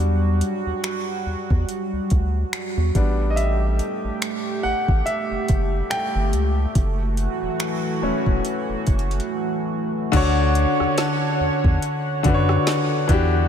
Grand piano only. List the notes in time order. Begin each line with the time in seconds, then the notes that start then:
Already playing: G3 D4 F#4
2.95 G3 B3 D4
3.30 D#5
3.36 E5
4.63 F#5
5.06 E5
5.90 G5
8.02 E3 A3 C#4
10.12 D3 D4 F#4
10.16 C#5
12.23 D3 D4 F#4
12.28 B4
12.34 C#5
13.08 E3 D4 F#4
13.12 G4